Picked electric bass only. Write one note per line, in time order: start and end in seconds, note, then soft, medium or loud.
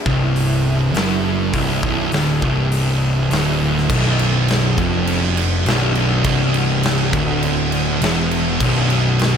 0.06 0.90 C1 medium
0.95 1.50 F#1 medium
1.54 1.81 C1 medium
1.83 2.10 B0 loud
2.12 2.40 D1 medium
2.43 3.27 C1 loud
3.32 3.86 D1 medium
3.90 4.74 B0 medium
4.78 5.62 F1 medium
5.65 6.20 B0 medium
6.25 7.09 C1 medium
7.13 7.98 D1 loud
8.02 8.56 E1 loud
8.60 9.37 B0 medium